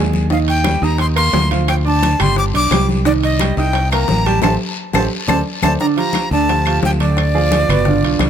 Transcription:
Already playing: fingered electric bass D#2, grand piano G#3 G#4 G#5
0.13 high bongo, high conga, short guiro
0.30 grand piano D#3 D#4 D#5, flute F5, high bongo, high conga, long guiro
0.48 flute G5, high conga, high timbale
0.64 grand piano G3 G4 G5, high bongo, high conga, high timbale, short guiro, claves
0.82 fingered electric bass D#2, grand piano D#4 D#5 D#6, flute A#5, high conga, short guiro
0.98 flute C6, high bongo, high conga, high timbale, long guiro
1.16 grand piano A#3 A#4 A#5, flute C6, high conga, high timbale, claves
1.33 fingered electric bass D2, high bongo, low bongo, high conga, low timbale, short guiro
1.51 grand piano F3 F4 F5, high conga, high timbale, short guiro
1.68 flute G5, high bongo, high conga, high timbale, long guiro, claves
1.85 grand piano D4 D5 D6, flute A5, high conga
2.02 high bongo, high conga, high timbale, short guiro
2.19 fingered electric bass G1, grand piano G3 G4 G5, flute C6, high bongo, high conga, low conga, high timbale, short guiro, claves
2.36 flute D6, high bongo, high conga, long guiro
2.54 fingered electric bass B1, grand piano D4 D5 D6, flute D6, high bongo, high conga, high timbale
2.71 fingered electric bass C2, grand piano G3 G4 G5, high bongo, low bongo, high conga, high timbale, low timbale, short guiro, claves
2.88 high bongo, high conga, short guiro
3.05 grand piano D#3 D#4 D#5, flute D5, high bongo, high conga, long guiro
3.23 flute D#5, high conga, high timbale
3.39 grand piano G3 G4 G5, high bongo, high conga, high timbale, short guiro, claves
3.57 fingered electric bass C2, grand piano D#4 D#5 D#6, flute G5, high conga, short guiro
3.73 high bongo, high conga, high timbale, long guiro
3.91 grand piano A#3 A#4 A#5, flute A#5, high conga, high timbale, claves
4.08 fingered electric bass A1, high bongo, low bongo, high conga, short guiro
4.26 grand piano G3 G4 G5, flute A5, high conga, high timbale, short guiro
4.42 fingered electric bass A1, grand piano G4 A4 C5, flute A5, low bongo, high conga, high timbale, long guiro, claves
4.93 fingered electric bass A1, grand piano G4 A4 C5, flute A5, low bongo, high conga, high timbale, long guiro, claves
5.28 fingered electric bass D2, grand piano A4 C5 D5, flute A5, low bongo, high conga, high timbale, claves
5.62 fingered electric bass D2, grand piano A4 C5 D5, flute A5, low bongo, high conga, high timbale, long guiro, claves
5.79 grand piano D3 D4 D5, flute A#5, high bongo, high conga, long guiro
5.96 grand piano F3 F4 G4, flute A#5, high conga, high timbale
6.13 high bongo, high conga, high timbale, short guiro, claves
6.31 fingered electric bass D2, grand piano D3 D4 D5, flute A5, high conga, short guiro
6.49 grand piano F3 F4 G4, high bongo, high conga, high timbale, long guiro
6.66 grand piano F3 F4 G4, high conga, high timbale, claves
6.83 fingered electric bass D2, flute G5, high bongo, low bongo, high conga, short guiro
7.00 grand piano D3 D4 D5, flute D5, high conga, high timbale, short guiro
7.17 high bongo, high conga, high timbale, long guiro, claves
7.35 grand piano F3 F4 G#4, high conga
7.51 grand piano F3 F4 G#4, high bongo, high conga, high timbale, short guiro
7.69 fingered electric bass G1, grand piano B2 B3 B4, high bongo, high conga, low conga, high timbale, short guiro, claves
7.85 grand piano D3 D4 F4, high bongo, high conga, low conga, long guiro
8.03 fingered electric bass B1, grand piano D3 D4 F4, high bongo, high conga, high timbale
8.19 fingered electric bass C2, high bongo, low bongo, high conga, high timbale, short guiro, claves

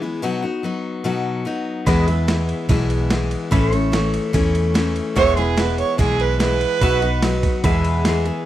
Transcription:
0.02 steel-string acoustic guitar E3 G#3 B3 E4
0.22 steel-string acoustic guitar B2 F#3 B3 D#4 F#4
0.42 steel-string acoustic guitar B3 D#4 F#4
0.63 steel-string acoustic guitar F#3 B3 D#4 F#4
1.04 steel-string acoustic guitar B2 F#3 B3 D#4 F#4
1.45 steel-string acoustic guitar F#3 B3 D#4 F#4
1.86 steel-string acoustic guitar E2 B2 E3 G#3 B3 E4, fingered electric bass E2, pedal steel guitar B4 D#5, kick, ride
2.07 steel-string acoustic guitar E3 G#3 B3 E4, pedal steel guitar E5, ride
2.27 steel-string acoustic guitar E3 G#3 B3 E4, snare, ride
2.49 ride
2.69 fingered electric bass B1, steel-string acoustic guitar E2 B2 E3 G#3 B3 E4, kick, ride
2.90 ride
3.10 steel-string acoustic guitar E3 G#3 B3 E4, snare, ride
3.31 ride
3.51 fingered electric bass A1, steel-string acoustic guitar A2 E3 A3 C#4 E4, pedal steel guitar B4 E5, kick, ride
3.72 steel-string acoustic guitar A3 C#4 E4, ride
3.77 pedal steel guitar C#5
3.92 steel-string acoustic guitar E3 A3 C#4 E4, snare, ride
4.14 ride
4.33 fingered electric bass E2, steel-string acoustic guitar A2 E3 A3 C#4 E4, kick, ride
4.55 ride
4.74 steel-string acoustic guitar E3 A3 C#4 E4, snare, ride
4.96 ride
5.15 fingered electric bass E1, steel-string acoustic guitar E2 B2 E3 G#3 B3 E4, pedal steel guitar C#5 E5, fiddle C#5, kick, ride
5.36 steel-string acoustic guitar E3 G#3 B3 E4, fiddle G#4, ride
5.42 pedal steel guitar B4
5.57 steel-string acoustic guitar E3 G#3 B3 E4, fiddle B4, snare, ride
5.78 fiddle C#5, ride
5.98 fingered electric bass B1, steel-string acoustic guitar E2 B2 E3 G#3 B3 E4, fiddle G#4, kick, ride
6.20 fiddle B4, ride
6.40 steel-string acoustic guitar E3 G#3 B3 E4, fiddle B4, snare, ride
6.61 ride
6.81 fingered electric bass B1, steel-string acoustic guitar B2 F#3 B3 D#4 F#4, pedal steel guitar B4 E5, kick, ride
7.02 steel-string acoustic guitar B3 D#4 F#4, pedal steel guitar D#5, ride
7.22 steel-string acoustic guitar F#3 B3 D#4 F#4, snare, ride
7.43 kick, ride
7.64 steel-string acoustic guitar E2 B2 E3 G#3 B3 G#4, fingered electric bass E2, pedal steel guitar B4 E5, kick, ride
7.84 ride
8.05 steel-string acoustic guitar E3 G#3 B3 G#4, snare, ride
8.25 steel-string acoustic guitar E3 G#3 B3 G#4, ride

